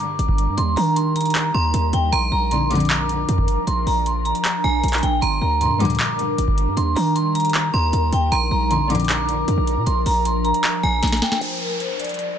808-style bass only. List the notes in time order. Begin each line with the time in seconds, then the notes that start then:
0.19 G1
0.48 G2
0.58 D#2
0.77 D#3
1.55 D#2
1.74 D#2
1.93 D#2
2.12 A#1
2.32 A#1
3.29 F2
3.67 A#1
3.87 A#1
4.64 A#1
4.83 A#1
5.03 A#1
5.22 G1
5.42 D2
5.71 G2
5.85 D2
6.38 G1
6.67 G2
6.77 D#2
6.96 D#3
7.74 D#2
7.93 D#2
8.12 D#2
8.32 A#1
8.51 A#1
9.48 F2
9.58 A#1
9.77 A#2
9.87 A#1
10.06 A#1
10.83 A#1
11.03 A#1